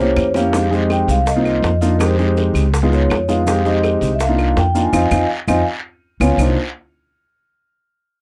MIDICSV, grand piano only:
0, 0, Header, 1, 2, 480
1, 0, Start_track
1, 0, Key_signature, -3, "minor"
1, 0, Tempo, 365854
1, 707, Time_signature, 4, 2, 24, 8
1, 10772, End_track
2, 0, Start_track
2, 0, Title_t, "Grand piano"
2, 0, Program_c, 0, 0
2, 0, Note_on_c, 0, 58, 71
2, 0, Note_on_c, 0, 61, 64
2, 0, Note_on_c, 0, 64, 60
2, 0, Note_on_c, 0, 67, 73
2, 323, Note_off_c, 0, 64, 0
2, 324, Note_off_c, 0, 58, 0
2, 324, Note_off_c, 0, 67, 0
2, 325, Note_off_c, 0, 61, 0
2, 462, Note_on_c, 0, 67, 84
2, 464, Note_on_c, 0, 58, 73
2, 467, Note_on_c, 0, 61, 73
2, 467, Note_on_c, 0, 64, 68
2, 672, Note_off_c, 0, 67, 0
2, 686, Note_on_c, 0, 60, 63
2, 689, Note_on_c, 0, 56, 67
2, 691, Note_on_c, 0, 67, 80
2, 695, Note_on_c, 0, 63, 68
2, 705, Note_off_c, 0, 58, 0
2, 707, Note_off_c, 0, 61, 0
2, 707, Note_off_c, 0, 64, 0
2, 864, Note_off_c, 0, 60, 0
2, 866, Note_off_c, 0, 56, 0
2, 867, Note_off_c, 0, 67, 0
2, 869, Note_off_c, 0, 63, 0
2, 928, Note_on_c, 0, 56, 71
2, 935, Note_on_c, 0, 67, 73
2, 936, Note_on_c, 0, 63, 59
2, 939, Note_on_c, 0, 60, 66
2, 1525, Note_off_c, 0, 56, 0
2, 1529, Note_off_c, 0, 63, 0
2, 1529, Note_off_c, 0, 67, 0
2, 1531, Note_off_c, 0, 60, 0
2, 1784, Note_on_c, 0, 60, 69
2, 1785, Note_on_c, 0, 65, 79
2, 1786, Note_on_c, 0, 58, 74
2, 1787, Note_on_c, 0, 63, 69
2, 2205, Note_off_c, 0, 60, 0
2, 2206, Note_off_c, 0, 58, 0
2, 2206, Note_off_c, 0, 65, 0
2, 2207, Note_off_c, 0, 63, 0
2, 2379, Note_on_c, 0, 62, 62
2, 2381, Note_on_c, 0, 65, 76
2, 2383, Note_on_c, 0, 63, 70
2, 2384, Note_on_c, 0, 58, 75
2, 2551, Note_off_c, 0, 62, 0
2, 2552, Note_off_c, 0, 65, 0
2, 2553, Note_off_c, 0, 58, 0
2, 2553, Note_off_c, 0, 63, 0
2, 2618, Note_on_c, 0, 56, 69
2, 2622, Note_on_c, 0, 60, 67
2, 2622, Note_on_c, 0, 63, 69
2, 2629, Note_on_c, 0, 67, 81
2, 2790, Note_off_c, 0, 56, 0
2, 2792, Note_off_c, 0, 60, 0
2, 2792, Note_off_c, 0, 63, 0
2, 2796, Note_off_c, 0, 67, 0
2, 2862, Note_on_c, 0, 60, 62
2, 2866, Note_on_c, 0, 63, 68
2, 2868, Note_on_c, 0, 67, 84
2, 2870, Note_on_c, 0, 56, 68
2, 3452, Note_off_c, 0, 60, 0
2, 3454, Note_off_c, 0, 63, 0
2, 3456, Note_off_c, 0, 56, 0
2, 3456, Note_off_c, 0, 67, 0
2, 3706, Note_on_c, 0, 59, 74
2, 3707, Note_on_c, 0, 63, 66
2, 3708, Note_on_c, 0, 56, 73
2, 3710, Note_on_c, 0, 65, 81
2, 4126, Note_off_c, 0, 59, 0
2, 4127, Note_off_c, 0, 56, 0
2, 4127, Note_off_c, 0, 63, 0
2, 4128, Note_off_c, 0, 65, 0
2, 4308, Note_on_c, 0, 56, 66
2, 4311, Note_on_c, 0, 59, 60
2, 4311, Note_on_c, 0, 63, 56
2, 4312, Note_on_c, 0, 65, 73
2, 4475, Note_off_c, 0, 56, 0
2, 4477, Note_off_c, 0, 59, 0
2, 4477, Note_off_c, 0, 63, 0
2, 4477, Note_off_c, 0, 65, 0
2, 4547, Note_on_c, 0, 56, 76
2, 4548, Note_on_c, 0, 60, 64
2, 4549, Note_on_c, 0, 67, 83
2, 4550, Note_on_c, 0, 63, 65
2, 4715, Note_off_c, 0, 56, 0
2, 4715, Note_off_c, 0, 60, 0
2, 4716, Note_off_c, 0, 63, 0
2, 4716, Note_off_c, 0, 67, 0
2, 4787, Note_on_c, 0, 67, 85
2, 4790, Note_on_c, 0, 63, 70
2, 4792, Note_on_c, 0, 56, 70
2, 4792, Note_on_c, 0, 60, 72
2, 5375, Note_off_c, 0, 67, 0
2, 5376, Note_off_c, 0, 63, 0
2, 5377, Note_off_c, 0, 56, 0
2, 5377, Note_off_c, 0, 60, 0
2, 5620, Note_on_c, 0, 65, 76
2, 5622, Note_on_c, 0, 58, 67
2, 5625, Note_on_c, 0, 62, 68
2, 5626, Note_on_c, 0, 63, 64
2, 6044, Note_off_c, 0, 58, 0
2, 6044, Note_off_c, 0, 65, 0
2, 6046, Note_off_c, 0, 62, 0
2, 6046, Note_off_c, 0, 63, 0
2, 6226, Note_on_c, 0, 58, 65
2, 6228, Note_on_c, 0, 62, 59
2, 6233, Note_on_c, 0, 65, 73
2, 6234, Note_on_c, 0, 63, 55
2, 6394, Note_off_c, 0, 58, 0
2, 6395, Note_off_c, 0, 62, 0
2, 6398, Note_off_c, 0, 63, 0
2, 6398, Note_off_c, 0, 65, 0
2, 6463, Note_on_c, 0, 65, 86
2, 6465, Note_on_c, 0, 63, 90
2, 6471, Note_on_c, 0, 60, 86
2, 6618, Note_off_c, 0, 65, 0
2, 6619, Note_off_c, 0, 63, 0
2, 6623, Note_off_c, 0, 60, 0
2, 6701, Note_on_c, 0, 63, 79
2, 6709, Note_on_c, 0, 60, 78
2, 6709, Note_on_c, 0, 65, 90
2, 6857, Note_off_c, 0, 63, 0
2, 6862, Note_off_c, 0, 60, 0
2, 6862, Note_off_c, 0, 65, 0
2, 7188, Note_on_c, 0, 63, 92
2, 7193, Note_on_c, 0, 60, 86
2, 7193, Note_on_c, 0, 65, 93
2, 7341, Note_off_c, 0, 63, 0
2, 7344, Note_off_c, 0, 60, 0
2, 7344, Note_off_c, 0, 65, 0
2, 8151, Note_on_c, 0, 59, 83
2, 8152, Note_on_c, 0, 65, 80
2, 8154, Note_on_c, 0, 61, 84
2, 8303, Note_off_c, 0, 59, 0
2, 8304, Note_off_c, 0, 65, 0
2, 8305, Note_off_c, 0, 61, 0
2, 8391, Note_on_c, 0, 65, 75
2, 8393, Note_on_c, 0, 58, 63
2, 8393, Note_on_c, 0, 63, 66
2, 8394, Note_on_c, 0, 62, 67
2, 8612, Note_off_c, 0, 65, 0
2, 8613, Note_off_c, 0, 63, 0
2, 8614, Note_off_c, 0, 58, 0
2, 8614, Note_off_c, 0, 62, 0
2, 10772, End_track
0, 0, End_of_file